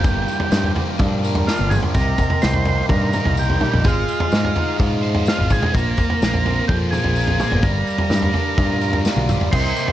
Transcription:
Already playing: A#3 G4 A#4 F5
0.04 G1 G2 G5 D6, kick, floor tom, tambourine
0.28 tambourine
0.40 floor tom
0.52 G2 F3, snare, tambourine
0.64 floor tom
0.75 A#3, floor tom, tambourine
0.99 G2 D4, kick, floor tom, mid tom, tambourine
1.24 A#4, tambourine
1.35 floor tom
1.47 D4 F4, snare, tambourine
1.59 G1, high tom
1.70 F3 G#4, mid tom, tambourine
1.83 floor tom
1.94 C2 C3 A#4 D#5 C6, kick, floor tom, tambourine
2.18 kick, floor tom, tambourine
2.30 floor tom
2.42 C2 G3 C5, snare, tambourine
2.53 floor tom
2.65 A#3, floor tom, tambourine
2.89 G2 D#4 A#4, kick, floor tom, mid tom, tambourine
3.13 A#4, mid tom, tambourine
3.25 C2, floor tom
3.37 D#4 G4, tambourine
3.50 floor tom
3.61 G3, mid tom
3.73 A#1, floor tom
3.84 G#1 G#3 F4 G#4 F5 C6, kick, floor tom, tambourine
4.08 tambourine
4.20 floor tom
4.32 G#2 G#3, snare, tambourine
4.45 floor tom
4.55 D#4, floor tom, tambourine
4.78 G#2 F4, kick, floor tom, mid tom, tambourine
5.03 C5
5.15 floor tom
5.26 F4, snare, tambourine
5.38 G#1, floor tom
5.50 G#3 G#4, kick, mid tom, tambourine
5.63 floor tom, mid tom
5.72 A#1 A#3 A#4 C5 F5, kick, floor tom, tambourine
5.97 kick, floor tom, tambourine
6.10 floor tom
6.22 A#1 A#3, snare, tambourine
6.34 floor tom
6.46 C4, floor tom, tambourine
6.68 F2 F4 G4, kick, floor tom, mid tom, tambourine
6.91 G#4 A#4, mid tom, tambourine
7.04 A#1, floor tom
7.16 F4, tambourine
7.28 floor tom
7.40 A#3, mid tom, tambourine
7.52 G1, floor tom
7.63 G1 G3 G4 A#4 D5 A#5, kick, floor tom, tambourine
7.87 tambourine
7.98 floor tom
8.10 G2 G3, snare, tambourine
8.22 floor tom
8.34 D4, floor tom, tambourine
8.58 G2 F4, kick, floor tom, mid tom, tambourine
8.81 A#4, tambourine
8.93 floor tom
9.05 F4, snare, tambourine
9.17 B1, high tom
9.29 G3, mid tom, tambourine
9.41 floor tom
9.52 C2 C3 A#4 C5 D#5 G5 C6, kick, floor tom, crash
9.76 A#3, tambourine
9.88 floor tom

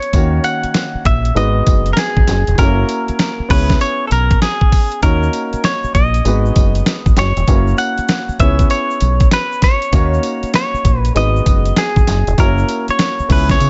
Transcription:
Already playing: B3 C#4 E4 G#4 C#5
0.02 closed hi-hat
0.13 D#2 D#3 A#3 C#4 F#4 C#5, kick, closed hi-hat, tambourine
0.44 F#5, closed hi-hat, tambourine
0.63 muted fingered electric bass stroke, closed hi-hat
0.74 snare, closed hi-hat, tambourine
0.95 muted fingered electric bass stroke
1.05 A#1 E5, kick, closed hi-hat
1.25 closed hi-hat
1.35 G#1 G#3 B3 D#4 F#4 B4 D#5, closed hi-hat, tambourine
1.66 F#1, kick, closed hi-hat, tambourine
1.86 closed hi-hat
1.93 A#4, snare, closed hi-hat, tambourine
1.99 G#4
2.16 G#1, kick
2.27 F#1, snare, closed hi-hat, tambourine
2.47 E1, closed hi-hat
2.58 F#1 A3 C#4 E4 F#4 A#4 C#5, kick, closed hi-hat, tambourine
2.65 A#3
2.89 closed hi-hat, tambourine
3.08 muted fingered electric bass stroke, closed hi-hat
3.19 snare, closed hi-hat, tambourine
3.39 muted fingered electric bass stroke
3.49 C#2 B3 C#4 E4 G#4 B4 C#5, kick, open hi-hat
3.70 kick, snare, closed hi-hat
3.81 C#5, closed hi-hat, tambourine
4.07 B1 A4, closed hi-hat, tambourine
4.12 A#4
4.31 kick, closed hi-hat
4.42 G#4, snare, closed hi-hat, tambourine
4.61 kick
4.72 kick, open hi-hat, tambourine
4.92 closed hi-hat
5.02 D#2 A#3 C#4 D#4 F#4 A#4 C#5, kick, closed hi-hat, tambourine, shaker
5.23 shaker
5.33 closed hi-hat, tambourine, shaker
5.53 muted fingered electric bass stroke, closed hi-hat, shaker
5.64 C#5, snare, closed hi-hat, tambourine, shaker
5.84 muted fingered electric bass stroke, shaker
5.95 A#1 D#5, kick, closed hi-hat, shaker
6.14 closed hi-hat, shaker
6.25 G#1 G#3 B3 D#4 F#4 B4, closed hi-hat, tambourine, shaker
6.46 shaker
6.55 F#1, kick, closed hi-hat, tambourine, shaker
6.75 closed hi-hat, shaker
6.86 snare, closed hi-hat, tambourine, shaker
7.06 G#1, kick, shaker
7.17 F#1 C#5, snare, closed hi-hat, tambourine, shaker
7.36 E1, closed hi-hat, shaker
7.48 F#1 A#3 C#4 E4 F#4 B4, kick, closed hi-hat, tambourine, shaker
7.56 C#5
7.68 shaker
7.78 F#5, closed hi-hat, tambourine, shaker
7.98 muted fingered electric bass stroke, closed hi-hat, shaker
8.08 snare, closed hi-hat, tambourine, shaker
8.29 muted fingered electric bass stroke, shaker
8.39 C#2 B3 C#4 E4 G#4 C#5 E5, kick, closed hi-hat, shaker
8.59 kick, closed hi-hat, shaker
8.70 C#5, closed hi-hat, tambourine, shaker
8.91 shaker
9.00 B1, closed hi-hat, tambourine, shaker
9.20 kick, closed hi-hat, shaker
9.31 B4, snare, closed hi-hat, tambourine, shaker
9.52 shaker
9.62 C#5, kick, snare, closed hi-hat, tambourine, shaker
9.82 closed hi-hat, shaker
9.92 D#2 A#3 C#4 D#4 F#4 C#5, kick, closed hi-hat, tambourine, shaker
10.14 shaker
10.23 closed hi-hat, tambourine, shaker
10.43 muted fingered electric bass stroke, closed hi-hat, shaker
10.54 C#5, snare, closed hi-hat, tambourine, shaker
10.74 muted fingered electric bass stroke, shaker
10.85 A#1, kick, closed hi-hat, shaker
10.98 B4
11.05 closed hi-hat, shaker
11.15 G#1 G#3 B3 D#4 F#4 B4 D#5, closed hi-hat, tambourine, shaker
11.36 shaker
11.46 F#1, kick, closed hi-hat, tambourine, shaker
11.65 closed hi-hat, shaker
11.76 G#4, snare, closed hi-hat, tambourine, shaker
11.96 G#1, kick, shaker
12.07 F#1, snare, closed hi-hat, tambourine, shaker
12.27 E1, closed hi-hat, shaker
12.38 F#1 A#3 C#4 E4 F#4 A#4 C#5, kick, closed hi-hat, tambourine, shaker
12.58 shaker
12.69 closed hi-hat, tambourine, shaker
12.88 C#5, muted fingered electric bass stroke, closed hi-hat, shaker
12.99 snare, closed hi-hat, tambourine, shaker
13.19 muted fingered electric bass stroke, shaker
13.28 C#2 B3 C#4 E4 G#4 B4 C#5, kick, open hi-hat, shaker
13.49 C#5, kick, snare, closed hi-hat, shaker
13.60 C#3, closed hi-hat, tambourine, shaker

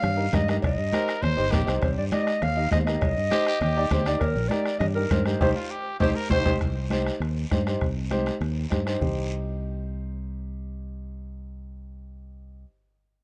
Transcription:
Already playing: F5
0.02 G2, bombo rim, cowbell, high conga, low conga, long guiro
0.16 D#4 G4 A#4
0.32 G2 D#4 G4 A#4 D#5, bombo low, bombo rim, cowbell, high conga, low conga, short guiro
0.48 D#4 G4 A#4 D#5, bombo rim, short guiro
0.62 C2 D#5, bombo low, bombo rim, cowbell, high conga, long guiro
0.78 G2
0.92 D#4 G4 A#4 C5, bombo rim, cowbell, high conga, short guiro
1.08 bombo rim, short guiro
1.22 D#2 C5, bombo rim, cowbell, high conga, low conga, long guiro
1.37 G1 D#4 G4 C5
1.51 A#1 D#4 G4 A#4, bombo low, bombo rim, cowbell, high conga, low timbale, short guiro
1.66 C2 D#4 G4 C5, bombo rim, short guiro
1.82 C2 C5, bombo low, bombo rim, cowbell, high conga, low conga, long guiro
1.98 G2 D5
2.12 D#4 G4 D5 D#5, bombo rim, cowbell, high conga, short guiro
2.27 bombo rim, short guiro
2.42 D#2 F5, bombo rim, cowbell, high conga, low conga, long guiro
2.56 D#4 G4 D#5
2.71 D#2 D#4 G4 C5 D#5, bombo low, bombo rim, cowbell, high conga, low conga, low timbale, short guiro
2.86 D#4 G4 A#4 D#5, bombo rim, short guiro
3.01 C2, bombo low, bombo rim, cowbell, high conga, long guiro
3.17 G2
3.31 D#4 G4 C5, bombo rim, cowbell, high conga, short guiro
3.46 G4, bombo rim, short guiro
3.61 D#2 G4, bombo rim, cowbell, high conga, low conga, long guiro
3.76 D#4 G4 D5
3.90 D2 D#4 G4 C5, bombo low, bombo rim, cowbell, high conga, low conga, low timbale, short guiro
4.06 D#4 G4 D5, bombo rim, short guiro
4.20 D#2 A#4, bombo low, bombo rim, cowbell, high conga, long guiro
4.35 A#1
4.48 D#4 G4 A#4 D5, bombo rim, cowbell, high conga, short guiro
4.66 bombo rim, short guiro
4.79 G2 D#5, bombo rim, cowbell, high conga, low conga, long guiro
4.95 D#4 G4 A#4
5.10 G2 D#4 G4 C5, bombo low, bombo rim, cowbell, high conga, low conga, short guiro
5.25 D#4 G4 A#4 C5, bombo rim, short guiro
5.41 C2 D#4 G4 C5, bombo low, high conga, high timbale, long guiro
5.55 F4
5.70 G4
6.00 C2 D#4 G4 C5, bombo low, high conga, high timbale, long guiro
6.15 A#4
6.30 C2 D#4 G4 C5, bombo low, high conga, high timbale, long guiro
6.45 C2 D#4 G4 C5, bombo low, high conga, high timbale, long guiro
6.61 C2, bombo low, bombo rim, high conga, long guiro
6.90 D#4 G4 C5, bombo rim, high conga, short guiro
7.07 bombo rim, short guiro
7.20 D#2, bombo rim, high conga, long guiro
7.51 G2 D#4 G4 C5, bombo low, bombo rim, high conga, short guiro
7.66 D#4 G4 C5, bombo rim, short guiro
7.81 C2, bombo low, bombo rim, high conga, long guiro
8.11 D#4 G4 C5, bombo rim, high conga, short guiro
8.26 bombo rim, short guiro
8.41 D#2, bombo rim, high conga, long guiro
8.70 G2 D#4 G4 C5, bombo low, bombo rim, high conga, short guiro
8.86 D#4 G4 C5, bombo rim, short guiro
8.99 C2 D#4 G4 C5, bombo low, low conga, long guiro

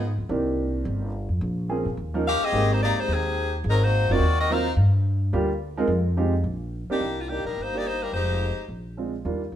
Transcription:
Already playing: G#2 F3 B3 D#4 G#4
0.18 C#2
0.29 C2 D#3 A#3 C4 D4 G4
0.85 G1
1.29 F2
1.41 A#1
1.69 F3 A#3 C4 C#4 G#4
1.86 A#2
1.97 D#2
2.14 F3 A#3 C#4 D#4 A#4
2.27 C#4 G4 A#4 F5
2.41 C4 G4 G#4 D#5, muted upright bass stroke
2.52 G#1 G#3 A#3 C4 D#4 G4
2.72 G#3 D#4 G4 C5
2.83 A#3 D#4 G4 D5
2.97 G#3 D#4 G4 C5, muted upright bass stroke
3.08 D#2
3.13 D#3 C4 G4 G#4
3.64 G#1
3.69 F#3 C4 D#4 A#4
3.84 A#3 D#4 F#4 C5
4.09 F#1 F#3 A#3 C4 D#4 F4 F#4 A#4 D5
4.20 D#2
4.40 C4 F#4 A#4 D#5
4.50 F#3 A#3 C4 D#4 F4 A#4 C5 F5
4.76 G2
5.33 D2 G3 A#3 D4 F4 G4
5.77 G#3 C4 D#4 F4 A#4
5.87 F2
6.17 G#3 C4 D#4 F4 G4
6.44 A#1
6.90 D#3 A#3 C4 D4 D#4 G4, muted upright bass stroke
7.00 C2
7.21 G3 A#3 D4 F4
7.29 D#3 A#3 D4 D#4 G4
7.44 A#1 G3 D4 D#4 A#4
7.56 G1
7.63 A#3 D#4 G4 C5
7.74 A#3 D4 D#4 G4 D5
7.87 A#3 D#4 G4 C5
8.03 G3 D4 D#4 A#4
8.13 F1 G#3 D#4 G4 C5
8.69 A#1
8.97 G#3 C4 D4 F4
9.25 D#2 G3 A#3 D4 F4
9.52 E2

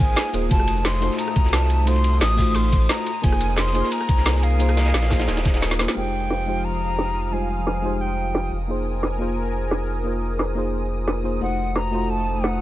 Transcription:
Already playing: G#1 A#3 D#4 F4 G#4 A#4 C5 D#6
0.00 G#5
0.16 snare, closed hi-hat, ride
0.33 D#1 A#3 D#4 F4 G#4 C5, closed hi-hat, ride, shaker
0.49 F1 A3 D#4 F4 F#4 C5 A5 D#6, kick, closed hi-hat, ride
0.60 cross-stick
0.67 closed hi-hat, ride, shaker
0.77 shaker
0.85 C6, snare, closed hi-hat, ride
0.94 snare
1.00 A3 D#4 F4 F#4 C5, closed hi-hat, ride, shaker
1.11 snare, shaker
1.18 A#5, closed hi-hat, ride
1.28 cross-stick
1.36 kick, closed hi-hat, ride, shaker
1.45 C2, snare
1.53 A5, snare, closed hi-hat, ride
1.62 snare
1.70 closed hi-hat, ride, shaker
1.85 A3 D#4 F4 F#4 C5 C6, closed hi-hat, ride
1.96 ride
2.04 closed hi-hat, ride, shaker
2.13 shaker
2.21 A1 D#6, snare, closed hi-hat, ride
2.37 A3 D#4 F4 F#4 C5, kick, snare, open hi-hat, ride, shaker
2.47 shaker
2.54 C6, cross-stick, closed hi-hat, ride
2.72 kick, closed hi-hat, ride, shaker
2.89 A#5, snare, closed hi-hat, ride
3.06 A#4 G#5, closed hi-hat, ride, shaker
3.22 F1 A#3 D#4 F4 G#4 C5 G#5, kick, closed hi-hat, ride
3.32 cross-stick
3.40 closed hi-hat, ride, shaker
3.49 shaker
3.56 C6, snare, closed hi-hat, ride
3.66 snare
3.73 A#3 D#4 F4 G#4 C5, closed hi-hat, ride, shaker
3.83 snare, shaker
3.92 A#5, closed hi-hat, ride
4.01 cross-stick
4.08 kick, closed hi-hat, ride, shaker
4.17 C2, snare
4.25 snare, closed hi-hat, ride
4.35 snare
4.42 F5, closed hi-hat, ride, shaker
4.58 A#3 D#4 F4 G#4 C5, closed hi-hat, ride
4.69 cross-stick, ride
4.77 snare, closed hi-hat, ride, shaker
4.86 snare, ride, shaker
4.94 A#1, snare, closed hi-hat, ride
5.02 snare, ride
5.09 A#3 D#4 F4 G#4 C5, kick, snare, open hi-hat, ride, shaker
5.19 snare, ride, shaker
5.28 D#1, cross-stick, snare, closed hi-hat, ride
5.37 snare, ride
5.45 kick, snare, closed hi-hat, ride, shaker
5.54 snare, ride
5.62 snare, closed hi-hat, ride
5.71 snare
5.78 A#3 D#4 F4 G#4 C5, snare, closed hi-hat, ride, shaker
5.88 snare
5.95 F1 F3 G#3 D#4 F4 G4 C5 F5 G5 D#6
6.13 shaker
6.22 shaker
6.30 snare
6.46 G#3 D#4 F4 G4 C5, shaker
6.56 shaker
6.64 A#5
6.82 shaker
6.99 snare
7.31 G3 G#3 D#4 F4 C5 G#5
7.67 snare
7.82 G#3 D#4 F4 G4 C5
8.01 G5
8.18 shaker
8.35 snare
8.52 F1 A#4 G#5, shaker
8.68 A#3 D#4 F4 G#4 C5
8.86 shaker
8.95 shaker
9.03 snare
9.18 A#3 D#4 F4 G#4 C5, shaker
9.54 shaker
9.71 snare
9.88 shaker
10.04 A#3 D#4 F4 G#4 C5
10.22 shaker
10.39 snare
10.55 A#3 D#4 F4 G#4 C5, shaker
10.91 shaker
11.08 snare
11.24 A#3 D#4 F4 G#4 C5, shaker
11.40 F1 A3 D#4 F4 F#4 C5 F#5
11.59 shaker
11.68 shaker
11.76 A#5, snare
11.91 A3 D#4 F4 F#4 C5, shaker
12.02 shaker
12.10 A5
12.27 shaker
12.44 F#5, snare

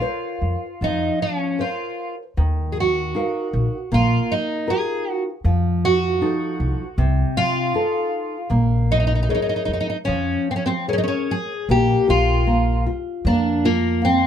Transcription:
Already playing: F4
0.01 A#4 C5 C#5
0.42 F2
0.81 F2 F3 D#4
1.22 C#4
1.59 F4 A#4 C5 C#5
2.37 D#2 D#3
2.72 G#4
2.80 F#4
3.15 D#4 A#4 F5
3.53 A#1
3.92 A#1 A#3 F4
4.32 D#4
4.67 D#4 F4 G#4 A#4
5.11 F#4
5.44 F2 F3
5.85 F#4
6.21 F3 D#4 A4
6.60 C2
6.98 C2 C3
7.37 F4
7.74 D#4 F4 A4
8.50 A#1 A#3
8.92 D#4
9.00 D#4
9.07 D#4
9.15 D#4
9.23 D#4
9.29 D#4 G#4 A#4 C#5
9.35 D#4
9.42 D#4
9.49 D#4
9.56 D#4
9.65 F2 D#4
9.73 D#4
9.80 D#4
9.90 D#4
10.05 F2 F3 C#4
10.51 C4
10.56 C#4
10.66 C4
10.88 C#4 G#4 A#4 C#5
10.93 C#4
10.98 D#4
11.03 C#4
11.08 C#4
11.31 G#4
11.69 A#1 A#3 G4
12.08 A#1 F4
12.47 A#3
12.87 F4
13.25 F2 A#3 D4
13.65 A#3 F4
14.02 A#3 C4

